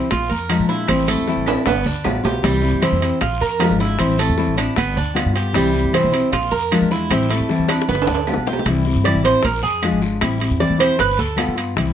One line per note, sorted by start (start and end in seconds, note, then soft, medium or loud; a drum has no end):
0.00 0.11 G3 soft
0.00 0.11 C4 soft
0.00 0.10 E4 soft
0.11 0.30 A#1 loud
0.11 0.30 F4 medium
0.11 muted nylon-string guitar stroke medium
0.11 high bongo medium
0.11 high timbale medium
0.11 long guiro medium
0.11 maracas medium
0.29 0.58 F2 medium
0.29 0.68 A#4 medium
0.29 high bongo soft
0.29 maracas soft
0.49 0.68 F3 medium
0.49 0.69 G#3 medium
0.49 0.69 D4 medium
0.49 0.69 F4 medium
0.49 high bongo soft
0.49 low bongo medium
0.49 high timbale medium
0.49 short guiro medium
0.49 claves medium
0.49 maracas soft
0.60 0.87 A#2 medium
0.69 0.88 G#3 soft
0.69 0.88 D4 medium
0.69 0.88 E4 medium
0.69 0.88 F4 medium
0.69 short guiro medium
0.69 maracas medium
0.87 1.16 A1 loud
0.87 1.07 E3 medium
0.87 1.07 G3 medium
0.87 1.07 C4 medium
0.87 1.07 E4 medium
0.87 high bongo medium
0.87 high timbale loud
0.87 long guiro medium
0.87 claves medium
0.87 maracas medium
1.08 1.27 G3 soft
1.08 1.46 A3 medium
1.08 1.27 C4 soft
1.08 1.27 E4 medium
1.08 high bongo soft
1.08 high timbale medium
1.08 maracas soft
1.17 1.36 E2 medium
1.27 1.46 E3 medium
1.27 1.46 G3 medium
1.27 1.47 C4 medium
1.27 1.46 E4 medium
1.27 high bongo medium
1.27 short guiro medium
1.27 maracas soft
1.37 1.55 A1 medium
1.46 1.65 G3 soft
1.46 1.66 C4 soft
1.46 1.66 D4 medium
1.46 1.66 E4 medium
1.46 high bongo soft
1.46 high timbale loud
1.46 short guiro medium
1.46 claves medium
1.46 maracas medium
1.66 1.85 G1 loud
1.66 1.85 B3 medium
1.66 muted nylon-string guitar stroke medium
1.66 high bongo medium
1.66 high timbale loud
1.66 long guiro medium
1.66 maracas medium
1.86 2.04 D2 medium
1.86 2.23 D4 medium
1.86 high bongo soft
1.86 maracas soft
2.04 2.23 A1 medium
2.04 2.23 G3 medium
2.04 2.24 B3 medium
2.04 2.22 F4 medium
2.04 high bongo soft
2.04 low bongo medium
2.04 low timbale medium
2.04 short guiro medium
2.04 claves medium
2.04 maracas soft
2.24 2.42 B1 medium
2.24 2.43 B3 soft
2.24 2.43 F4 medium
2.24 2.43 G4 medium
2.24 low timbale medium
2.24 short guiro medium
2.24 maracas medium
2.43 2.71 C2 loud
2.43 2.62 C3 medium
2.43 2.62 E3 medium
2.43 2.62 G3 medium
2.43 2.82 G3 medium
2.43 2.62 C4 medium
2.43 2.61 E4 medium
2.43 high bongo medium
2.43 high timbale medium
2.43 long guiro medium
2.43 maracas medium
2.62 2.81 G3 soft
2.62 2.82 C4 soft
2.62 2.81 E4 soft
2.62 high bongo soft
2.62 maracas soft
2.73 2.92 G2 medium
2.81 3.01 C3 medium
2.81 3.01 E3 medium
2.81 3.01 G3 medium
2.81 3.20 C4 medium
2.81 3.01 C4 medium
2.81 3.01 E4 medium
2.81 high bongo medium
2.81 high timbale medium
2.81 short guiro medium
2.81 claves medium
2.81 maracas soft
2.92 3.11 F2 medium
3.02 3.21 G3 soft
3.02 3.21 C4 soft
3.02 3.21 E4 medium
3.02 high bongo soft
3.02 high timbale medium
3.02 short guiro medium
3.02 maracas medium
3.21 3.40 A#1 loud
3.21 3.40 F4 medium
3.21 muted nylon-string guitar stroke medium
3.21 high bongo medium
3.21 high timbale medium
3.21 long guiro medium
3.21 maracas medium
3.41 3.69 F2 medium
3.41 3.79 A#4 medium
3.41 high bongo soft
3.41 maracas soft
3.60 3.79 F3 medium
3.60 3.79 G#3 medium
3.60 3.80 D4 medium
3.60 3.79 F4 medium
3.60 high bongo soft
3.60 low bongo medium
3.60 high timbale medium
3.60 low timbale medium
3.60 short guiro medium
3.60 claves medium
3.60 maracas soft
3.70 3.98 G#1 medium
3.80 3.99 G#3 soft
3.80 3.99 D4 soft
3.80 3.99 E4 medium
3.80 3.99 F4 medium
3.80 short guiro medium
3.80 maracas medium
3.99 4.27 A1 loud
3.99 4.18 E3 medium
3.99 4.18 G3 medium
3.99 4.18 C4 medium
3.99 4.17 E4 medium
3.99 high bongo medium
3.99 high timbale medium
3.99 long guiro medium
3.99 claves medium
3.99 maracas medium
4.18 4.37 G3 soft
4.18 4.57 A3 medium
4.18 4.37 C4 soft
4.18 4.37 E4 soft
4.18 high bongo soft
4.18 high timbale medium
4.18 maracas soft
4.29 4.47 E2 medium
4.37 4.56 E3 medium
4.37 4.57 G3 medium
4.37 4.57 C4 medium
4.37 4.55 E4 medium
4.37 high bongo medium
4.37 short guiro medium
4.37 maracas soft
4.48 4.66 A1 medium
4.57 4.75 G3 soft
4.57 4.76 C4 soft
4.57 4.76 D4 medium
4.57 4.76 E4 medium
4.57 high bongo soft
4.57 high timbale medium
4.57 short guiro medium
4.57 claves medium
4.57 maracas medium
4.76 4.96 G1 loud
4.76 4.96 B3 medium
4.76 muted nylon-string guitar stroke medium
4.76 high bongo medium
4.76 high timbale medium
4.76 long guiro medium
4.76 maracas medium
4.96 5.24 D2 medium
4.96 5.34 D4 medium
4.96 high bongo soft
4.96 maracas soft
5.14 5.33 G3 medium
5.14 5.34 B3 medium
5.14 5.33 F4 medium
5.14 high bongo soft
5.14 low bongo medium
5.14 high timbale loud
5.14 short guiro medium
5.14 claves medium
5.14 maracas soft
5.26 5.53 G2 medium
5.34 5.54 B3 soft
5.34 5.53 F4 soft
5.34 5.54 G4 medium
5.34 high timbale medium
5.34 short guiro medium
5.34 maracas medium
5.53 5.83 C2 loud
5.53 5.73 C3 medium
5.53 5.73 E3 medium
5.53 5.73 G3 medium
5.53 5.93 G3 medium
5.53 5.73 C4 medium
5.53 5.72 E4 medium
5.53 high bongo medium
5.53 high timbale medium
5.53 long guiro medium
5.53 maracas medium
5.73 5.92 G3 soft
5.73 5.93 C4 soft
5.73 5.92 E4 medium
5.73 high bongo soft
5.73 maracas soft
5.84 6.03 G2 medium
5.92 6.12 C3 medium
5.92 6.12 E3 medium
5.92 6.12 G3 medium
5.92 6.11 C4 medium
5.92 6.32 C4 medium
5.92 6.10 E4 medium
5.92 high bongo medium
5.92 high timbale loud
5.92 short guiro medium
5.92 claves medium
5.92 maracas soft
6.04 6.22 B1 medium
6.12 6.32 G3 soft
6.12 6.31 C4 medium
6.12 6.31 E4 medium
6.12 high bongo soft
6.12 high timbale medium
6.12 short guiro medium
6.12 maracas medium
6.32 6.51 A#1 loud
6.32 6.51 F4 medium
6.32 muted nylon-string guitar stroke medium
6.32 high bongo medium
6.32 high timbale medium
6.32 long guiro medium
6.32 maracas medium
6.52 6.80 F2 medium
6.52 6.89 A#4 medium
6.52 high bongo soft
6.52 maracas soft
6.71 6.90 F3 medium
6.71 6.90 G#3 medium
6.71 6.90 D4 medium
6.71 6.90 F4 medium
6.71 high bongo soft
6.71 low bongo medium
6.71 high timbale medium
6.71 short guiro medium
6.71 claves medium
6.71 maracas soft
6.81 7.09 E2 medium
6.91 7.10 G#3 soft
6.91 7.10 D4 soft
6.91 7.10 E4 medium
6.91 7.10 F4 soft
6.91 short guiro medium
6.91 maracas medium
7.10 7.38 A1 loud
7.10 7.29 E3 medium
7.10 7.30 G3 medium
7.10 7.29 C4 medium
7.10 7.30 C4 medium
7.10 7.29 E4 medium
7.10 high bongo medium
7.10 high timbale medium
7.10 long guiro medium
7.10 claves medium
7.10 maracas medium
7.30 7.49 G3 soft
7.30 7.68 A3 medium
7.30 7.49 C4 soft
7.30 7.49 E4 medium
7.30 high bongo soft
7.30 high timbale medium
7.30 maracas soft
7.40 7.58 E2 medium
7.49 7.68 E3 medium
7.49 7.68 G3 medium
7.49 7.69 C4 medium
7.49 7.68 E4 medium
7.49 high bongo medium
7.49 short guiro medium
7.49 maracas soft
7.59 7.77 E2 medium
7.68 7.87 G3 soft
7.68 7.88 C4 soft
7.68 7.87 D4 medium
7.68 7.87 E4 medium
7.68 high bongo medium
7.68 high timbale medium
7.68 short guiro medium
7.68 claves medium
7.68 maracas medium
7.82 high bongo medium
7.88 8.07 G1 loud
7.88 8.07 B3 medium
7.88 muted nylon-string guitar stroke medium
7.88 high timbale medium
7.88 long guiro medium
7.88 maracas medium
7.95 high bongo medium
8.02 high timbale loud
8.07 8.36 D2 medium
8.07 8.45 D4 medium
8.07 low bongo medium
8.07 maracas soft
8.15 high timbale loud
8.27 8.46 G3 medium
8.27 8.46 B3 medium
8.27 8.47 F4 medium
8.27 low timbale medium
8.27 short guiro medium
8.27 claves medium
8.27 maracas soft
8.34 8.65 B1 medium
8.34 low bongo medium
8.46 8.66 B3 soft
8.46 8.66 F4 soft
8.46 8.66 G4 medium
8.46 low bongo loud
8.46 short guiro medium
8.46 maracas medium
8.53 low timbale medium
8.59 low bongo medium
8.65 8.93 C2 loud
8.65 8.84 C3 medium
8.65 8.85 E3 medium
8.65 8.85 G3 medium
8.65 8.85 C4 medium
8.65 8.84 E4 medium
8.65 high bongo medium
8.65 high timbale medium
8.65 long guiro medium
8.65 maracas medium
8.85 9.05 G3 soft
8.85 9.04 C4 soft
8.85 9.04 E4 soft
8.85 high bongo soft
8.85 maracas soft
8.96 9.14 G2 medium
9.04 9.24 C3 medium
9.04 9.24 E3 medium
9.04 9.24 G3 medium
9.04 9.24 C4 medium
9.04 9.23 E4 medium
9.04 9.24 D5 medium
9.04 high bongo medium
9.04 high timbale medium
9.04 short guiro medium
9.04 claves medium
9.04 maracas soft
9.15 9.33 A1 medium
9.24 9.43 G3 soft
9.24 9.43 C4 soft
9.24 9.43 E4 medium
9.24 9.43 C5 medium
9.24 high bongo soft
9.24 high timbale medium
9.24 short guiro medium
9.24 maracas medium
9.43 9.62 A#1 loud
9.43 9.62 A#4 medium
9.43 muted nylon-string guitar stroke medium
9.43 high bongo medium
9.43 high timbale medium
9.43 long guiro medium
9.43 maracas medium
9.63 9.91 F2 medium
9.63 9.99 G#4 medium
9.63 high bongo soft
9.63 maracas soft
9.82 10.01 F3 medium
9.82 10.02 G#3 medium
9.82 10.02 D4 medium
9.82 10.01 F4 medium
9.82 high bongo soft
9.82 low bongo medium
9.82 high timbale medium
9.82 short guiro medium
9.82 claves medium
9.82 maracas soft
9.92 10.20 G#1 medium
10.01 10.21 G#3 soft
10.01 10.21 D4 soft
10.01 10.21 F4 medium
10.01 short guiro medium
10.01 maracas medium
10.21 10.49 A1 loud
10.21 10.40 E3 medium
10.21 10.40 G3 medium
10.21 10.40 C4 medium
10.21 10.39 E4 medium
10.21 high bongo medium
10.21 high timbale loud
10.21 long guiro medium
10.21 claves medium
10.21 maracas loud
10.40 10.59 G3 soft
10.40 10.59 C4 soft
10.40 10.59 E4 soft
10.40 high bongo soft
10.40 high timbale medium
10.40 maracas soft
10.51 10.69 E2 medium
10.60 10.78 E3 medium
10.60 10.79 G3 medium
10.60 10.79 C4 medium
10.60 10.78 E4 medium
10.60 10.79 D5 medium
10.60 high bongo medium
10.60 short guiro medium
10.60 maracas soft
10.70 10.88 E2 medium
10.79 10.97 G3 soft
10.79 10.98 C4 soft
10.79 10.98 E4 medium
10.79 10.99 C5 medium
10.79 high bongo soft
10.79 high timbale loud
10.79 short guiro medium
10.79 claves medium
10.79 maracas medium
10.98 11.18 G1 loud
10.98 11.18 B4 medium
10.98 muted nylon-string guitar stroke medium
10.98 high bongo medium
10.98 high timbale medium
10.98 long guiro medium
10.98 maracas medium
11.18 11.46 D2 medium
11.18 11.55 A4 medium
11.18 high bongo soft
11.18 maracas soft
11.36 11.56 G3 medium
11.36 11.56 B3 medium
11.36 11.55 F4 medium
11.36 high bongo soft
11.36 low bongo medium
11.36 high timbale medium
11.36 short guiro medium
11.36 claves medium
11.36 maracas soft
11.48 11.75 G2 medium
11.56 11.76 B3 soft
11.56 11.75 F4 medium
11.56 high timbale medium
11.56 short guiro medium
11.56 maracas medium
11.76 11.93 C2 loud
11.76 11.93 C3 medium
11.76 11.93 E3 medium
11.76 11.93 G3 medium
11.76 11.93 C4 medium
11.76 11.93 E4 medium
11.76 high bongo medium
11.76 high timbale medium
11.76 long guiro medium
11.76 maracas medium